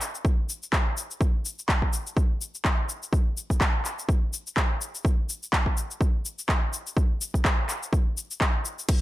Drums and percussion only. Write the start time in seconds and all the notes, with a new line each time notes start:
0.01 clap, cabasa
0.15 cabasa
0.25 kick, cabasa
0.49 cabasa
0.63 cabasa
0.73 kick, clap, cabasa
0.97 cabasa
1.11 cabasa
1.21 kick, cabasa
1.45 cabasa
1.59 cabasa
1.69 kick, clap, cabasa
1.82 kick
1.93 cabasa
2.07 cabasa
2.17 kick, cabasa
2.41 cabasa
2.55 cabasa
2.65 kick, clap, cabasa
2.89 cabasa
3.03 cabasa
3.13 kick, cabasa
3.37 cabasa
3.50 kick, cabasa
3.61 kick, clap, cabasa
3.85 clap, cabasa
3.99 cabasa
4.09 kick, cabasa
4.33 cabasa
4.47 cabasa
4.57 kick, clap, cabasa
4.81 cabasa
4.95 cabasa
5.05 kick, cabasa
5.29 cabasa
5.43 cabasa
5.53 kick, clap, cabasa
5.66 kick
5.77 cabasa
5.91 cabasa
6.01 kick, cabasa
6.25 cabasa
6.39 cabasa
6.49 kick, clap, cabasa
6.73 cabasa
6.87 cabasa
6.97 kick, cabasa
7.21 cabasa
7.34 kick, cabasa
7.45 kick, clap, cabasa
7.69 clap, cabasa
7.83 cabasa
7.93 kick, cabasa
8.17 cabasa
8.31 cabasa
8.41 kick, clap, cabasa
8.65 cabasa
8.79 cabasa
8.89 kick, closed hi-hat, crash, cabasa